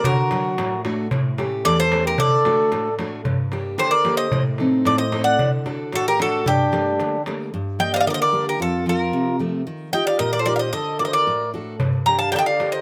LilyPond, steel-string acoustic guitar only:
\new Staff \with { instrumentName = "Steel-string acoustic guitar" } { \time 2/4 \key g \minor \tempo 4 = 112 d8 <fis d' fis'>8 a,8 <a d' fis'>8 | a,8 <a cis' g'>8 e,8 <a cis' g'>8 | d8 <a d' fis'>8 a,8 <a d' fis'>8 | g,8 <bes d' g'>8 d8 <bes d' g'>8 |
a,8 <c' ees' a'>8 a,8 <c' ees' a'>8 | d8 <d' fis' a'>8 a,8 <d' fis' a'>8 | g,8 <g a bes>8 d8 <g a bes>8 | g,8 <g bes d'>8 d8 <g bes d'>8 |
f,8 <f c'>8 c8 <f a c'>8 | ees8 <ees' f' g'>8 bes,8 <ees' f' g'>8 | d8 <d' fis'>8 a,8 <d' fis' a'>8 | g,8 <d' g' bes'>8 d8 <d' g' bes'>8 | }